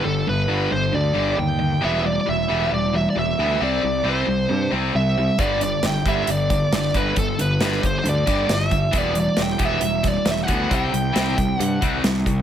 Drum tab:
HH |--------|--------|--------|xxxxxxxx|
SD |--------|--------|--------|--o---o-|
BD |--------|--------|--------|o--o-o-o|

HH |xxxxxxxx|xxxxxxxx|xxxxxxxx|
SD |--o--oo-|--o--oo-|--o---o-|
BD |o--o-o-o|o--o-o-o|o--o-o-o|